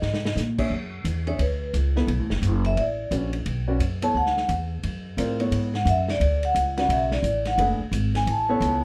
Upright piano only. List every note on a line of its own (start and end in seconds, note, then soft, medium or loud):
0.58 0.70 D4 medium
0.58 0.70 G#4 medium
0.58 0.70 C#5 medium
0.58 0.70 E5 medium
1.27 1.39 D4 medium
1.27 1.39 G#4 medium
1.27 1.39 C#5 medium
1.27 1.39 E5 medium
1.96 2.08 B3 medium
1.96 2.07 E4 medium
1.96 2.08 A4 medium
1.96 2.08 B4 medium
3.12 3.31 C#4 medium
3.12 3.31 F#4 soft
3.12 3.32 B4 soft
3.12 3.32 D5 medium
3.68 3.79 C#4 medium
3.68 3.79 F#4 medium
3.68 3.79 B4 medium
3.68 3.80 D5 medium
4.02 4.13 B3 medium
4.02 4.13 E4 medium
4.02 4.13 A4 medium
4.02 4.14 C#5 medium
5.17 5.37 C4 medium
5.17 5.37 F4 medium
5.17 5.38 A#4 medium
5.17 5.38 D5 medium
5.40 5.70 B3 medium
5.40 5.70 E4 medium
5.40 5.70 A4 soft
5.40 5.70 C#5 medium
6.77 7.21 C#3 medium
6.77 7.22 F#4 medium
6.77 7.22 B4 soft
6.77 7.22 D5 medium
7.58 7.78 A3 medium
7.58 7.78 D4 medium
7.58 7.78 G#4 medium
7.58 7.78 B4 medium
8.49 8.84 B3 medium
8.49 8.84 E4 medium
8.49 8.84 A4 medium
8.49 8.84 C#5 medium